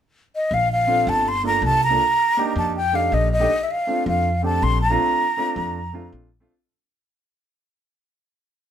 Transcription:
0.36 0.55 D#5 medium
0.51 1.03 A#1 medium
0.51 0.71 F5 medium
0.72 1.10 F5 medium
0.87 1.25 C4 medium
0.87 1.25 D4 medium
0.87 1.26 F4 medium
0.87 1.26 A4 medium
1.07 1.59 G1 medium
1.07 1.30 A5 medium
1.28 1.46 C6 medium
1.43 1.76 A#3 medium
1.43 1.77 D4 medium
1.43 1.77 F4 medium
1.43 1.77 A4 medium
1.43 1.63 A#5 medium
1.62 1.95 C2 medium
1.62 1.82 A5 loud
1.84 2.53 A#5 medium
1.90 2.00 A#3 medium
1.90 2.00 D4 medium
1.90 2.00 F4 medium
1.90 2.01 A4 medium
2.37 2.75 A#3 medium
2.37 2.75 D4 medium
2.37 2.75 D#4 medium
2.37 2.76 G4 medium
2.56 3.08 F2 medium
2.56 2.75 A5 medium
2.76 2.97 G5 medium
2.92 3.26 A3 medium
2.92 3.26 D4 medium
2.92 3.26 D#4 medium
2.92 3.27 G4 medium
2.92 3.15 F5 medium
3.12 3.45 A#1 medium
3.12 3.32 D#5 medium
3.32 3.65 D#5 medium
3.39 3.49 A3 medium
3.39 3.49 D4 medium
3.39 3.50 D#4 medium
3.39 3.50 G4 medium
3.63 3.72 E5 medium
3.71 4.07 F5 medium
3.87 4.26 A3 medium
3.87 4.27 C4 medium
3.87 4.27 D4 medium
3.87 4.27 F4 medium
4.06 4.58 F2 medium
4.06 4.42 F5 medium
4.42 4.76 A3 medium
4.42 4.76 C4 medium
4.42 4.76 D4 medium
4.42 4.77 G4 medium
4.42 4.65 A5 medium
4.62 4.95 A#1 medium
4.62 4.82 C6 loud
4.82 6.09 A#5 medium
4.89 5.23 A3 medium
4.89 5.23 C4 medium
4.89 5.23 D4 medium
4.89 5.24 F4 medium
5.37 5.76 A3 medium
5.37 5.77 C4 medium
5.37 5.77 D4 medium
5.37 5.77 F4 medium
5.56 6.09 F2 medium
5.93 6.26 A3 medium
5.93 6.27 C4 medium
5.93 6.27 D4 medium
5.93 6.27 F4 medium
6.13 6.46 A#1 medium
6.40 6.50 A3 medium
6.40 6.50 C4 medium
6.40 6.51 D4 medium
6.40 6.51 F4 loud

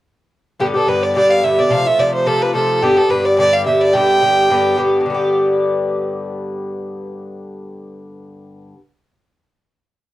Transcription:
0.60 0.75 G2 soft
0.60 0.75 D3 medium
0.60 0.74 B3 medium
0.60 0.67 G4 medium
0.60 0.73 G4 medium
0.74 0.87 D3 soft
0.74 0.87 B3 soft
0.74 0.87 G4 soft
0.74 0.90 A4 medium
0.87 1.14 G2 medium
0.87 1.15 D3 medium
0.87 1.15 B3 medium
0.87 1.16 G4 medium
0.87 1.05 B4 medium
1.03 1.15 D5 medium
1.15 1.42 G2 medium
1.15 1.43 D3 medium
1.15 1.44 B3 medium
1.15 1.44 G4 medium
1.15 1.32 D5 medium
1.30 1.45 F5 medium
1.43 1.58 G2 soft
1.43 1.59 D3 soft
1.43 1.58 B3 medium
1.43 1.57 G4 soft
1.43 1.60 E5 medium
1.58 1.70 D3 soft
1.58 1.71 B3 soft
1.58 1.71 G4 soft
1.58 1.73 D5 medium
1.70 1.86 C3 medium
1.70 1.86 F3 medium
1.70 1.86 A3 medium
1.70 1.85 F4 medium
1.70 1.88 F5 medium
1.86 1.98 F3 soft
1.86 1.99 A3 soft
1.86 1.99 F4 soft
1.86 2.01 E5 medium
1.98 2.25 C3 soft
1.98 2.25 F3 medium
1.98 2.26 A3 medium
1.98 2.26 F4 medium
1.98 2.14 D5 medium
2.14 2.29 C5 medium
2.26 2.52 C3 medium
2.26 2.53 F3 medium
2.26 2.54 A3 medium
2.26 2.54 F4 medium
2.26 2.43 A4 medium
2.42 2.54 B4 medium
2.54 2.82 C3 medium
2.54 2.82 F3 medium
2.54 2.83 A3 medium
2.54 2.83 F4 medium
2.54 2.85 A4 medium
2.82 2.97 G2 medium
2.82 2.98 D3 medium
2.82 2.96 B3 medium
2.82 2.99 G4 medium
2.82 2.95 G4 medium
2.96 3.10 D3 soft
2.96 3.10 B3 soft
2.96 3.10 G4 soft
2.96 3.12 A4 medium
3.09 3.37 G2 medium
3.09 3.38 D3 medium
3.09 3.39 B3 soft
3.09 3.40 G4 medium
3.09 3.27 B4 medium
3.25 3.38 D5 medium
3.38 3.64 G2 medium
3.38 3.66 D3 medium
3.38 3.66 B3 medium
3.38 3.67 G4 medium
3.38 3.55 D5 loud
3.53 3.66 F5 medium
3.66 3.93 G2 medium
3.66 3.95 D3 soft
3.66 3.95 B3 medium
3.66 3.95 G4 medium
3.66 3.83 E5 medium
3.81 3.95 D5 medium
3.94 4.20 G2 medium
3.94 4.22 D3 medium
3.94 4.22 B3 medium
3.94 4.23 G4 medium
3.94 4.77 G5 loud
4.21 4.49 G2 soft
4.21 4.50 D3 medium
4.21 4.50 B3 soft
4.21 4.51 G4 medium
4.50 4.75 G2 medium
4.50 4.77 D3 medium
4.50 4.78 B3 medium
4.50 4.78 G4 medium
4.76 4.99 G2 medium
4.76 5.05 D3 soft
4.76 5.10 B3 medium
4.76 5.14 G4 medium
5.01 8.73 G2 medium
5.06 8.76 D3 medium
5.10 8.78 B3 medium
5.14 8.80 G4 medium

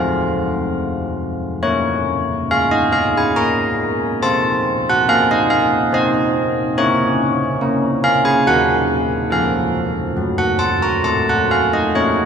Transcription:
0.00 1.59 F3 medium
0.00 1.60 A3 soft
0.00 1.59 C4 soft
0.00 0.71 F4 medium
0.00 0.71 F5 medium
1.62 2.32 A#3 medium
1.62 4.18 C#4 soft
1.62 2.46 C#5 loud
2.51 3.19 G#3 medium
2.51 2.72 F5 loud
2.71 2.93 D#5 medium
2.92 3.14 F5 loud
3.17 3.37 G#5 medium
3.36 4.05 A#3 medium
3.36 4.19 A#5 loud
4.22 4.91 C4 medium
4.22 6.73 F4 soft
4.22 4.84 A5 loud
4.90 5.09 F#5 loud
5.08 5.76 A#3 medium
5.08 5.29 F5 loud
5.31 5.51 D#5 loud
5.50 5.91 F5 loud
5.92 6.60 C4 medium
5.92 6.74 D#5 loud
6.78 7.44 C#4 medium
6.78 8.41 A#4 medium
6.78 7.98 C#5 loud
7.61 8.28 A#3 medium
8.04 8.24 F5 loud
8.25 8.45 G#5 loud
8.47 9.15 D#3 medium
8.47 9.28 A#4 soft
8.47 9.28 F#5 loud
9.30 10.01 F3 medium
9.30 11.89 A4 soft
9.30 10.36 F5 medium
10.17 10.87 F#3 medium
10.38 10.61 F#5 medium
10.59 10.82 A5 medium
10.82 11.05 A#5 medium
11.04 11.75 A3 medium
11.04 11.27 A5 medium
11.29 11.50 F#5 medium
11.51 11.72 F5 medium
11.73 11.94 D#5 medium
11.95 12.25 A#3 medium
11.95 12.25 F4 soft
11.95 12.25 C#5 loud

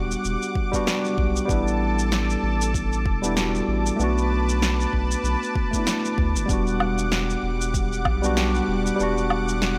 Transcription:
0.00 0.15 E1 medium
0.00 0.72 G3 medium
0.00 1.45 G3 medium
0.00 0.73 B3 medium
0.00 0.74 D4 medium
0.00 0.76 F#4 loud
0.00 0.89 G4 medium
0.00 1.45 F#5 medium
0.00 3.95 D6 medium
0.11 shaker medium
0.25 0.37 E1 medium
0.25 shaker medium
0.42 shaker soft
0.55 kick loud
0.72 0.83 G3 loud
0.72 0.84 B3 medium
0.72 0.84 D4 medium
0.72 0.85 F#4 loud
0.72 kick medium
0.72 shaker medium
0.85 1.44 G3 medium
0.85 1.46 B3 medium
0.85 1.47 D4 medium
0.85 1.47 G4 medium
0.85 snare loud
0.85 shaker medium
1.05 shaker soft
1.18 1.40 B1 medium
1.18 kick loud
1.36 shaker medium
1.45 3.17 G3 medium
1.45 3.19 B3 medium
1.45 3.97 A5 medium
1.45 kick loud
1.49 2.36 A1 medium
1.49 3.20 D4 medium
1.49 3.21 E4 loud
1.49 3.97 A4 medium
1.49 shaker medium
1.68 shaker soft
1.99 shaker medium
2.12 snare loud
2.12 shaker medium
2.30 shaker soft
2.43 3.07 A1 medium
2.61 shaker medium
2.74 kick medium
2.74 shaker medium
2.93 shaker soft
3.05 3.61 E1 medium
3.05 kick loud
3.22 3.33 G3 medium
3.22 3.34 B3 medium
3.22 3.34 D4 medium
3.22 shaker medium
3.26 3.35 E4 loud
3.35 3.95 G3 medium
3.35 3.96 B3 medium
3.35 3.97 D4 medium
3.35 3.97 F#4 medium
3.35 snare loud
3.35 shaker medium
3.55 shaker soft
3.68 3.91 A1 medium
3.86 shaker medium
3.96 4.86 B1 medium
3.96 5.68 A3 medium
3.96 5.69 B3 medium
3.96 6.47 B4 medium
3.96 6.47 A5 medium
3.96 9.78 D6 medium
3.96 shaker medium
4.01 5.70 D4 medium
4.01 5.72 F#4 medium
4.18 shaker soft
4.49 shaker medium
4.62 snare loud
4.62 shaker medium
4.80 shaker soft
4.93 5.16 B1 medium
4.93 kick medium
5.11 shaker medium
5.24 5.36 B1 medium
5.24 shaker medium
5.43 shaker soft
5.55 kick loud
5.71 6.45 A3 medium
5.71 6.46 B3 medium
5.71 kick medium
5.71 shaker medium
5.76 6.47 D4 medium
5.76 6.49 E4 medium
5.87 snare loud
5.87 shaker medium
6.05 shaker soft
6.18 6.37 D2 medium
6.18 kick loud
6.36 6.45 F#1 medium
6.36 shaker medium
6.46 7.36 E1 medium
6.46 8.18 G3 medium
6.46 8.19 B3 medium
6.46 kick loud
6.46 shaker medium
6.50 9.78 G3 medium
6.50 8.20 D4 medium
6.50 8.21 F#4 medium
6.50 9.78 F#5 medium
6.67 shaker soft
6.80 low woodblock medium
6.98 shaker medium
7.12 snare loud
7.12 shaker medium
7.30 shaker soft
7.43 8.07 E1 medium
7.61 shaker medium
7.74 kick loud
7.74 shaker medium
7.93 shaker soft
8.05 8.61 B1 medium
8.05 kick loud
8.05 low woodblock medium
8.22 8.33 G3 medium
8.22 8.34 B3 medium
8.22 8.34 D4 medium
8.22 8.35 F#4 loud
8.22 shaker medium
8.35 8.95 G3 medium
8.35 8.96 B3 medium
8.35 8.97 D4 medium
8.35 8.97 G4 medium
8.35 snare loud
8.35 shaker medium
8.55 shaker soft
8.68 8.91 E1 medium
8.87 shaker medium
8.96 9.78 G3 medium
8.96 9.78 B3 medium
8.96 shaker medium
9.00 9.78 E1 medium
9.00 9.78 D4 medium
9.00 9.78 F#4 loud
9.18 shaker soft
9.30 low woodblock medium
9.48 shaker medium
9.62 snare medium
9.62 shaker medium

